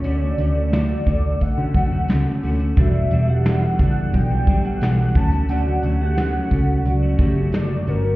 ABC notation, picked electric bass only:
X:1
M:4/4
L:1/16
Q:1/4=88
K:D
V:1 name="Picked electric bass" clef=bass
D,,2 D,,4 D,,2 z D, F,, D,, C,, z D,,2 | E,,,2 E,,,4 F,,,2 B,,,2 A,,,2 B,,,2 D,,2 | D,,2 D,,4 C,,2 C,,2 F,,,4 G,,,2 |]